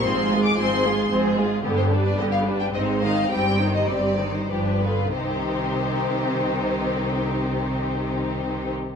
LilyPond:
<<
  \new Staff \with { instrumentName = "Violin section" } { \time 3/4 \key c \minor \tempo 4 = 98 c'''8. d'''16 c'''4 r4 | r16 c''8 d''16 ees''16 f''8 g''16 ees''8 f''8 | g''8. ees''16 d''8. c''16 b'4 | c''2.~ |
c''2. | }
  \new Staff \with { instrumentName = "Violin section" } { \time 3/4 \key c \minor <aes' c''>8 <f' aes'>8 <aes' c''>8 <f' aes'>8 <aes' c''>8 <f' aes'>8 | <b g'>8 <d' b'>8 <b g'>8 <d' b'>8 <ees' c''>8 <c' ees''>8 | <c' g'>8 <ees' c''>8 <c' g'>8 <ees' c''>8 g'8 <f' b'>8 | <ees' g'>2.~ |
<ees' g'>2. | }
  \new Staff \with { instrumentName = "Viola section" } { \clef bass \time 3/4 \key c \minor <f c'>8 aes8 <f c'>8 aes8 <f c'>8 aes8 | <d b>8 <g d'>8 <d b>8 <g d'>8 <aes c'>8 <ees ees'>8 | <g c'>8 <ees g>8 <g c'>8 <ees g>8 <f d'>8 <d b>8 | <ees c'>2.~ |
<ees c'>2. | }
  \new Staff \with { instrumentName = "Cello section" } { \clef bass \time 3/4 \key c \minor aes,4 aes,4 aes,4 | g,4 g,4 aes,4 | g,4 g,4 g,4 | c2.~ |
c2. | }
  \new Staff \with { instrumentName = "Double bass section" } { \clef bass \time 3/4 \key c \minor aes,,4 aes,,4 aes,,4 | g,,4 g,,4 aes,,4 | g,,4 g,,4 g,,4 | c,2.~ |
c,2. | }
>>